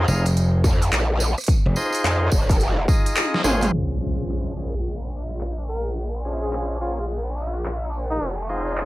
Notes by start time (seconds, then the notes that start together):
0.08 F1 D#4 F4 G#4 F5, tambourine
0.26 closed hi-hat, tambourine
0.37 closed hi-hat, tambourine
0.64 F2, kick, tambourine
0.82 closed hi-hat, tambourine
0.92 A#1, clap, closed hi-hat, tambourine
1.10 cross-stick
1.20 tambourine
1.38 cross-stick, closed hi-hat, tambourine
1.41 closed hi-hat
1.44 closed hi-hat
1.46 kick, closed hi-hat, tambourine
1.49 closed hi-hat
1.66 F1, cross-stick
1.69 cross-stick
1.72 cross-stick
1.74 D#4 F4 G#4 C5, cross-stick, tambourine
1.77 cross-stick
1.81 cross-stick
1.86 cross-stick
1.90 cross-stick, tambourine
1.95 closed hi-hat
2.04 F2, clap, closed hi-hat, tambourine
2.31 F1, kick, tambourine
2.49 kick, cross-stick, closed hi-hat, tambourine
2.60 closed hi-hat, tambourine
2.88 D#4 F4 G#4 D#5, kick, tambourine
3.06 closed hi-hat, tambourine
3.17 clap, closed hi-hat, high tom, tambourine
3.34 snare
3.44 G#1 C#4 F4 G#4 C5, cross-stick, mid tom, tambourine
3.61 closed hi-hat, mid tom, tambourine
3.72 A#1, crash, impact
4.00 C#4 F4 G#4 C5, tambourine
4.29 clap
4.57 C#4 F4 G#4 D#5
4.74 closed hi-hat, tambourine
4.84 closed hi-hat, tambourine
5.13 tambourine
5.30 closed hi-hat
5.41 clap, tambourine
5.68 A#4, tambourine
5.86 closed hi-hat, tambourine
5.96 closed hi-hat, tambourine
6.25 C#4 F4 G#4 C5, tambourine
6.42 G#4, closed hi-hat, tambourine
6.53 G#4, clap, closed hi-hat, tambourine
6.81 C#4 F4 G#4 C#5, tambourine
6.99 F4, closed hi-hat, tambourine
7.09 closed hi-hat, tambourine
7.38 tambourine
7.55 closed hi-hat, tambourine
7.65 clap, closed hi-hat, tambourine
7.93 tambourine
8.10 D#4, closed hi-hat, tambourine
8.21 F1, tambourine
8.30 closed hi-hat
8.49 D#4 F4 G#4 C5, tambourine
8.67 closed hi-hat, tambourine
8.77 clap, closed hi-hat, tambourine